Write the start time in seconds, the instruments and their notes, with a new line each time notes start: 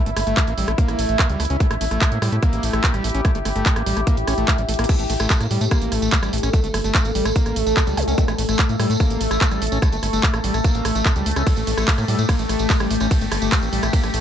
Already playing: synth drone E4 E5
0.06 analog synth bass G1, acid bass A3, closed hi-hat
0.17 analog synth bass G1, acid bass A3, cross-stick, open hi-hat
0.27 analog synth bass G1, acid bass A3, closed hi-hat
0.37 kick, cross-stick, clap, closed hi-hat
0.47 analog synth bass A1, acid bass A#3, closed hi-hat
0.58 analog synth bass A1, acid bass G3, open hi-hat
0.68 analog synth bass A1, acid bass A3, cross-stick, closed hi-hat
0.78 acid bass A#3, kick, closed hi-hat
0.88 analog synth bass A1, cross-stick, closed hi-hat
0.99 analog synth bass A1, acid bass A3, open hi-hat
1.09 analog synth bass A1, acid bass A3, closed hi-hat
1.19 acid bass A#3, kick, cross-stick, clap, closed hi-hat
1.30 analog synth bass C#2, acid bass G3, closed hi-hat
1.40 analog synth bass C#2, acid bass A3, cross-stick, open hi-hat
1.45 closed hi-hat
1.50 analog synth bass C#2, acid bass C#4, closed hi-hat
1.60 acid bass A3, synth drone G4, kick, closed hi-hat
1.71 analog synth bass A1, acid bass A3, cross-stick, closed hi-hat
1.81 analog synth bass A1, acid bass A3, open hi-hat
1.91 analog synth bass A1, acid bass A3, cross-stick, closed hi-hat
2.01 kick, clap, closed hi-hat
2.12 analog synth bass A2, acid bass A#3, closed hi-hat
2.22 analog synth bass A2, acid bass G3, cross-stick, open hi-hat
2.32 analog synth bass A2, acid bass A3, closed hi-hat
2.43 acid bass A#3, kick, cross-stick, closed hi-hat
2.53 analog synth bass A1, closed hi-hat
2.63 analog synth bass A1, acid bass A3, open hi-hat
2.73 analog synth bass A1, acid bass A3, cross-stick, closed hi-hat
2.84 acid bass A#3, kick, clap, closed hi-hat
2.94 analog synth bass A1, acid bass G3, cross-stick, closed hi-hat
3.04 analog synth bass A1, acid bass A3, open hi-hat
3.09 closed hi-hat
3.14 analog synth bass A1, acid bass C#4, closed hi-hat
3.25 acid bass A3, kick, cross-stick, closed hi-hat
3.35 analog synth bass G1, acid bass A3, closed hi-hat
3.45 analog synth bass G1, acid bass A3, cross-stick, open hi-hat
3.56 analog synth bass G1, acid bass A3, closed hi-hat
3.66 kick, clap, closed hi-hat
3.76 analog synth bass A1, acid bass A#3, cross-stick, closed hi-hat
3.86 analog synth bass A1, acid bass G3, open hi-hat
3.97 analog synth bass A1, acid bass A3, cross-stick, closed hi-hat
4.07 acid bass A#3, kick, closed hi-hat
4.17 analog synth bass A1, closed hi-hat
4.27 analog synth bass A1, acid bass C#4, cross-stick, open hi-hat
4.38 analog synth bass A1, acid bass A3, closed hi-hat
4.48 acid bass A3, kick, cross-stick, clap, closed hi-hat
4.58 analog synth bass A1, acid bass G3, closed hi-hat
4.69 analog synth bass A1, acid bass A3, closed hi-hat, open hi-hat
4.74 closed hi-hat
4.79 analog synth bass A1, acid bass A#3, cross-stick, closed hi-hat
4.84 closed hi-hat
4.89 acid bass A3, synth drone A3 A4, kick, cross-stick, closed hi-hat, crash, tambourine
4.99 analog synth bass A1, acid bass A3, closed hi-hat, tambourine
5.10 analog synth bass A1, acid bass A3, open hi-hat
5.20 analog synth bass A1, acid bass A3, cross-stick, closed hi-hat, tambourine
5.30 kick, clap, closed hi-hat, tambourine
5.40 analog synth bass A2, acid bass A#3, cross-stick, closed hi-hat, tambourine
5.51 analog synth bass A2, acid bass G3, open hi-hat
5.61 analog synth bass A2, acid bass A3, closed hi-hat, tambourine
5.71 acid bass A#3, kick, cross-stick, closed hi-hat, tambourine
5.82 analog synth bass A1, closed hi-hat, tambourine
5.92 analog synth bass A1, acid bass A3, cross-stick, open hi-hat
6.02 analog synth bass A1, acid bass A3, closed hi-hat, tambourine
6.12 acid bass A3, kick, clap, closed hi-hat, tambourine
6.23 analog synth bass A1, acid bass G3, cross-stick, closed hi-hat, tambourine
6.33 analog synth bass A1, acid bass A3, open hi-hat
6.38 closed hi-hat
6.43 analog synth bass A1, acid bass C#4, cross-stick, closed hi-hat, tambourine
6.53 acid bass A3, kick, closed hi-hat, tambourine
6.64 analog synth bass G1, acid bass A3, closed hi-hat, tambourine
6.74 analog synth bass G1, acid bass A3, cross-stick, open hi-hat
6.84 analog synth bass G1, acid bass A3, closed hi-hat, tambourine
6.95 kick, cross-stick, clap, closed hi-hat, tambourine
7.05 analog synth bass A1, acid bass A#3, closed hi-hat, tambourine
7.15 analog synth bass A1, acid bass G3, open hi-hat
7.25 analog synth bass A1, acid bass A3, cross-stick, closed hi-hat, tambourine
7.36 acid bass A#3, kick, closed hi-hat, tambourine
7.46 analog synth bass A1, cross-stick, closed hi-hat, tambourine
7.56 analog synth bass A1, acid bass A3, open hi-hat
7.67 analog synth bass A1, acid bass A3, closed hi-hat, tambourine
7.77 acid bass A3, kick, cross-stick, clap, closed hi-hat, tambourine
7.87 analog synth bass C#2, acid bass G3, closed hi-hat, tambourine
7.97 analog synth bass C#2, acid bass A3, cross-stick, open hi-hat, zap
8.03 closed hi-hat
8.08 analog synth bass C#2, acid bass C#4, closed hi-hat, tambourine
8.18 acid bass A3, kick, closed hi-hat, tambourine
8.28 analog synth bass A1, acid bass A3, cross-stick, closed hi-hat, tambourine
8.38 analog synth bass A1, acid bass A3, open hi-hat
8.49 analog synth bass A1, acid bass A3, cross-stick, closed hi-hat, tambourine
8.58 kick, clap, closed hi-hat, tambourine
8.69 analog synth bass A2, acid bass A#3, closed hi-hat, tambourine
8.80 analog synth bass A2, acid bass G3, cross-stick, open hi-hat
8.90 analog synth bass A2, acid bass A3, closed hi-hat, tambourine
9.00 acid bass A#3, kick, cross-stick, closed hi-hat, tambourine
9.10 analog synth bass A1, closed hi-hat, tambourine
9.21 analog synth bass A1, acid bass A3, open hi-hat
9.31 analog synth bass A1, acid bass A3, cross-stick, closed hi-hat, tambourine
9.41 acid bass A3, kick, clap, tambourine
9.51 analog synth bass A1, acid bass G3, cross-stick, closed hi-hat, tambourine
9.62 analog synth bass A1, acid bass A3, open hi-hat
9.67 closed hi-hat
9.72 analog synth bass A1, acid bass C#4, closed hi-hat, tambourine
9.82 acid bass A3, kick, cross-stick, closed hi-hat, tambourine
9.92 analog synth bass G1, acid bass A3, closed hi-hat, tambourine
10.03 analog synth bass G1, acid bass A3, cross-stick, open hi-hat
10.13 analog synth bass G1, acid bass A3, closed hi-hat, tambourine
10.23 kick, clap, closed hi-hat
10.34 analog synth bass A1, acid bass A#3, cross-stick, closed hi-hat, tambourine
10.44 analog synth bass A1, acid bass G3, open hi-hat
10.54 analog synth bass A1, acid bass A3, cross-stick, closed hi-hat, tambourine
10.64 acid bass A#3, kick, closed hi-hat, tambourine
10.75 analog synth bass A1, closed hi-hat, tambourine
10.85 analog synth bass A1, acid bass A3, cross-stick, open hi-hat
10.95 analog synth bass A1, acid bass A3, closed hi-hat, tambourine
11.06 acid bass A3, kick, cross-stick, clap, tambourine
11.16 analog synth bass C#2, acid bass G3, closed hi-hat, tambourine
11.26 analog synth bass C#2, acid bass A3, open hi-hat
11.31 closed hi-hat
11.36 analog synth bass C#2, acid bass C#4, cross-stick, closed hi-hat, tambourine
11.47 acid bass A3, synth drone G4, kick, cross-stick, closed hi-hat, ride, tambourine
11.56 analog synth bass A1, acid bass A3, closed hi-hat, tambourine
11.67 analog synth bass A1, acid bass A3, open hi-hat
11.77 analog synth bass A1, acid bass A3, cross-stick, closed hi-hat, tambourine
11.87 kick, clap, closed hi-hat, ride, tambourine
11.98 analog synth bass A2, acid bass A#3, cross-stick, closed hi-hat, tambourine
12.08 analog synth bass A2, acid bass G3, open hi-hat
12.19 analog synth bass A2, acid bass A3, closed hi-hat, tambourine
12.29 acid bass A#3, kick, cross-stick, closed hi-hat, ride, tambourine
12.39 analog synth bass A1, acid bass A3, closed hi-hat, tambourine
12.49 analog synth bass A1, acid bass A3, cross-stick, open hi-hat
12.59 analog synth bass A1, acid bass A3, closed hi-hat, tambourine
12.70 acid bass A3, kick, clap, closed hi-hat, ride, tambourine
12.80 analog synth bass A1, acid bass G3, cross-stick, closed hi-hat, tambourine
12.90 analog synth bass A1, acid bass A3, open hi-hat
12.96 closed hi-hat
13.00 analog synth bass A1, acid bass C#4, cross-stick, closed hi-hat, tambourine
13.11 acid bass A3, kick, closed hi-hat, ride, tambourine
13.21 analog synth bass G1, acid bass A3, closed hi-hat, tambourine
13.32 analog synth bass G1, acid bass A3, cross-stick, open hi-hat
13.42 analog synth bass G1, acid bass A3, closed hi-hat, tambourine
13.52 kick, cross-stick, clap, closed hi-hat, ride, tambourine
13.62 analog synth bass A1, acid bass A#3, closed hi-hat, tambourine
13.73 analog synth bass A1, acid bass G3, open hi-hat
13.83 analog synth bass A1, acid bass A3, cross-stick, closed hi-hat, tambourine
13.93 acid bass A#3, kick, closed hi-hat, ride, tambourine
14.04 analog synth bass A1, acid bass A3, cross-stick, closed hi-hat, tambourine
14.14 analog synth bass A1, acid bass A3, open hi-hat